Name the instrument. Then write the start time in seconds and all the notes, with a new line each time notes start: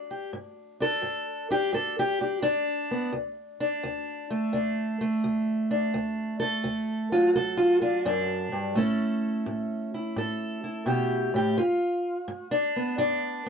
steel-string acoustic guitar
Already playing: G2 D4
0.11 G4
0.33 G2
0.80 D4 A4
1.02 G2
1.50 D4 G4
1.73 G2 A4
1.99 G4
2.21 D4 G4
2.42 G2 D4
2.91 B3
3.13 D2
3.60 D4
3.83 D2
4.30 A3
4.53 D2 D4
5.01 A3
5.24 D2
5.71 D4
5.94 D2
6.40 A3 A4
6.64 D2
7.12 F#3 F4
7.35 D2 A4
7.57 F4
7.82 D4 F4
8.05 F#2 D4
8.52 G2
8.75 A2 A3 C#4 E4 A4
9.46 A2
9.94 E4
10.16 A2 A4
10.64 E4
10.86 B2 G4
11.34 A2 G4
11.57 G2 F4
12.28 G2
12.51 D4
12.76 B3
12.98 G2 D4